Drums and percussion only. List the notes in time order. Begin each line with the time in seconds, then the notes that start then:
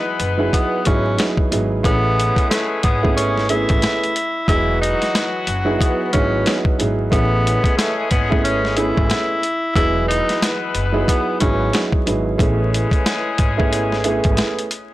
0.20 closed hi-hat
0.53 kick, closed hi-hat
0.85 kick, closed hi-hat
1.19 snare, closed hi-hat
1.37 kick
1.52 closed hi-hat
1.84 kick, closed hi-hat
2.20 closed hi-hat
2.36 kick, closed hi-hat
2.51 snare, closed hi-hat
2.83 kick, closed hi-hat
3.05 kick
3.18 closed hi-hat
3.38 snare
3.49 closed hi-hat
3.69 kick, closed hi-hat
3.82 snare, closed hi-hat
4.04 closed hi-hat
4.16 closed hi-hat
4.48 kick, closed hi-hat
4.83 closed hi-hat
5.02 snare, closed hi-hat
5.15 snare, closed hi-hat
5.47 closed hi-hat
5.81 kick, closed hi-hat
6.13 kick, closed hi-hat
6.46 snare, closed hi-hat
6.65 kick
6.80 closed hi-hat
7.12 kick, closed hi-hat
7.47 closed hi-hat
7.64 kick, closed hi-hat
7.79 snare, closed hi-hat
8.11 kick, closed hi-hat
8.32 kick
8.45 closed hi-hat
8.65 snare
8.77 closed hi-hat
8.97 kick
9.10 snare, closed hi-hat
9.43 closed hi-hat
9.76 kick, closed hi-hat
10.11 closed hi-hat
10.29 snare, closed hi-hat
10.42 snare, closed hi-hat
10.75 closed hi-hat
11.08 kick, closed hi-hat
11.40 kick, closed hi-hat
11.73 snare, closed hi-hat
11.92 kick
12.07 closed hi-hat
12.39 kick, closed hi-hat
12.74 closed hi-hat
12.91 kick, closed hi-hat
13.06 snare, closed hi-hat
13.38 kick, closed hi-hat
13.60 kick
13.73 closed hi-hat
13.92 snare
14.04 closed hi-hat
14.24 kick, closed hi-hat
14.37 snare, closed hi-hat
14.59 closed hi-hat
14.71 closed hi-hat